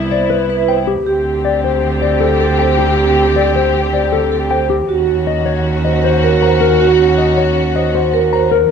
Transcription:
Already playing: C2 B3 E4
0.11 C5 D5
0.30 B4
0.50 B4
0.68 C5 G5
0.87 G4
1.06 D2 C4 G4
1.45 D5
1.64 C5
2.02 C5 D5
2.21 A4
2.40 A4
2.59 C5 G5
2.79 G4
2.98 G4
3.36 D5
3.56 C5
3.94 C5 D5
4.12 A4
4.32 A4
4.51 C5 G5
4.70 G4
4.89 D#2 C#4 F#4
5.27 D#5
5.46 C#5
5.85 C5 D#5
6.04 C5
6.23 A#4
6.42 C5 A#5
6.61 A#4
6.80 F#4
7.18 D#5
7.38 C#5
7.76 C5 D#5
7.95 C5
8.13 A#4
8.33 C5 A#5
8.52 A#4

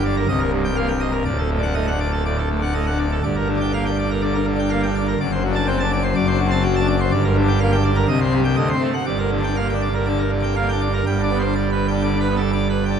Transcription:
Already playing: G1 G2
0.04 D5
0.16 A#4
0.28 C1 C2 D#5
0.40 A#4
0.52 G2
0.64 G5
0.76 A#3 F5
0.88 G5
1.00 D#5
1.12 A#4
1.25 D1 D2 D5
1.38 A4
1.51 A2
1.58 D4
1.63 F#5
1.75 A3 D#5
1.87 F#5
1.92 D4
2.00 D5
2.12 A4
2.26 A2 D5
2.38 A4
2.50 A2
2.58 D4
2.63 F#5
2.74 A3 D#5
2.87 F#5
2.91 D4
2.99 D5
3.12 A4
3.23 G1 G2 D5
3.36 A#4
3.48 D3
3.57 D4
3.61 G5
3.73 A#3 F5
3.86 G5
3.90 D4
3.99 D5
4.10 A#4
4.22 D3 D5
4.35 A#4
4.46 D3
4.55 D4
4.59 G5
4.70 A#3 F5
4.83 D4 G5
4.95 D5
5.08 A#4
5.20 F#1 F#2 D5
5.32 C5
5.44 F#3
5.52 D4 A5
5.67 C4 G5
5.80 D4 A5
5.92 D5
6.03 C5
6.15 F#1 F#2 D5
6.28 D4 C5
6.39 F#3
6.47 C4 A5
6.63 F#3 G5
6.76 A5
6.80 D4
6.87 D5
7.00 C5
7.11 G1 G2 D5
7.24 A#4
7.36 D3
7.43 D4
7.48 G5
7.60 A#3 F5
7.72 D4 G5
7.84 D5
7.96 A#4
8.08 C2 C3 D#5
8.21 C4 C5
8.33 G3
8.45 G5
8.56 D2 D3 D#5
8.69 C4 C5
8.81 A3
8.94 F#5
9.05 G1 G2 D5
9.18 A#4
9.31 D3
9.40 D4
9.44 G5
9.56 A#3 F5
9.69 G5
9.73 D4
9.82 D5
9.94 A#4
10.06 D3 D5
10.19 A#4
10.32 D3
10.40 D4 G5
10.56 A#3 F5
10.68 D4 G5
10.81 D5
10.94 A#4
11.06 G1 G2 G5
11.19 D4
11.23 D5
11.31 B3
11.40 D4 C5
11.55 D5
11.72 B4
11.88 D4 G5
12.04 D3 D5
12.17 D4 B4
12.28 B3
12.36 A4
12.41 D4
12.53 D5
12.69 B4
12.85 G5
12.89 D4

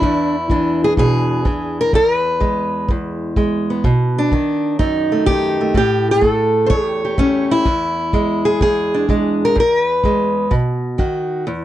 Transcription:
Already playing: E3 D4 E4
0.02 E2, kick
0.50 E3 D4, kick
0.84 G#4
0.97 B2 G#4, kick
1.45 E3, kick
1.81 A#4
1.93 E2 A#4, kick
2.15 B4
2.40 G#3, kick
2.89 E2, kick
3.36 G#3, kick
3.70 B3
3.84 B2, kick
4.18 D4
4.32 D#3, kick
4.79 F#2 D#4, kick
5.12 A3
5.26 D#3 G4, kick
5.61 A3
5.74 A2 G4, kick
6.11 G#4
6.21 A3, kick
6.31 A4
6.66 C5 C#5, kick
6.72 E2 G#4
6.87 G4
7.05 G4
7.18 A3 C#4, kick
7.51 E4
7.65 E2, kick
8.13 G#3, kick
8.45 G#4
8.61 E2 G#4, kick
8.94 D4
9.09 G#3, kick
9.45 A#4
9.55 E2, kick
9.60 A#4
9.80 B4
10.04 G#3, kick
10.51 B2, kick
10.98 D#3 F#4, kick
11.47 E2

